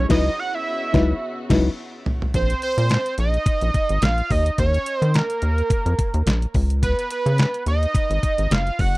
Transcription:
Already playing: string section E4
0.09 analog synth bass C#2, string section C#3 B3 C#4 F#4, fm electric piano F#3 D#4 E4 B4, analog synth lead D#5, kick, snare, crash
0.39 analog synth lead F#5
0.54 analog synth lead E5
0.93 analog synth bass C#2, fm electric piano F#3 D#4 E4 B4, kick, snare
1.50 analog synth bass C#2, fm electric piano F#3 D#4 E4 B4, kick, snare, crash
2.06 floor tom
2.22 floor tom
2.34 analog synth bass A#1, analog synth lead C5, kick, closed hi-hat
2.50 closed hi-hat
2.62 analog synth lead C5, closed hi-hat
2.78 analog synth bass A#2, closed hi-hat
2.90 snare, clap, closed hi-hat
3.06 closed hi-hat
3.18 analog synth bass A#1, analog synth lead D#5, closed hi-hat
3.34 closed hi-hat
3.46 kick, closed hi-hat
3.61 analog synth bass A#1, closed hi-hat
3.74 kick, closed hi-hat
3.89 analog synth bass G#1, closed hi-hat
4.02 analog synth bass A#1, analog synth lead F5, snare, clap, closed hi-hat
4.18 closed hi-hat
4.30 analog synth bass D#2, analog synth lead D#5, kick, open hi-hat
4.46 closed hi-hat
4.58 analog synth bass D#2, analog synth lead C#5, kick, closed hi-hat
4.74 closed hi-hat
4.86 closed hi-hat
4.97 analog synth lead C5
5.02 analog synth bass D#3, closed hi-hat
5.14 analog synth lead A#4, snare, clap, closed hi-hat
5.30 closed hi-hat
5.42 analog synth bass D#2, closed hi-hat
5.58 closed hi-hat
5.70 kick, closed hi-hat
5.86 analog synth bass F2, closed hi-hat
5.99 kick, closed hi-hat
6.14 analog synth bass D#2, closed hi-hat
6.26 analog synth bass A#1, snare, clap, closed hi-hat
6.42 closed hi-hat
6.54 analog synth bass C#2, kick, open hi-hat
6.70 closed hi-hat
6.83 analog synth lead B4, kick, closed hi-hat
6.99 closed hi-hat
7.10 analog synth lead B4, closed hi-hat
7.26 analog synth bass C#3, closed hi-hat
7.38 snare, clap, closed hi-hat
7.54 closed hi-hat
7.66 analog synth bass D#2, analog synth lead D#5, closed hi-hat
7.83 closed hi-hat
7.95 kick, closed hi-hat
8.10 analog synth bass G#1, closed hi-hat
8.23 kick, closed hi-hat
8.38 analog synth bass G#1, closed hi-hat
8.50 analog synth bass F#1, analog synth lead F5, snare, clap, closed hi-hat
8.67 closed hi-hat
8.79 analog synth bass F#1, analog synth lead F#5, kick, open hi-hat

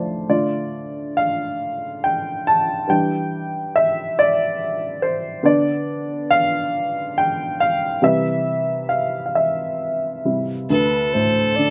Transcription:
Already playing: upright piano D2 A2 D3 F3 C5 D5 A5
0.29 upright piano D3 A3 F4 D5
1.17 upright piano F5
2.04 upright piano G5
2.47 upright piano A5
2.88 upright piano E3 G3 D4 G5
3.76 upright piano E5
4.19 upright piano D5
5.02 upright piano C5
5.43 upright piano D3 B3 D4 D5
6.31 upright piano F5
7.18 upright piano G5
7.60 upright piano F5
8.02 upright piano C3 E3 G3 E5
8.89 upright piano F5
9.26 upright piano F5
9.35 upright piano E5
10.25 upright piano C3 G3 E4
10.70 upright piano D2, fiddle A4, flute B4
11.13 upright piano A2, flute C5
11.56 upright piano D3, flute D5

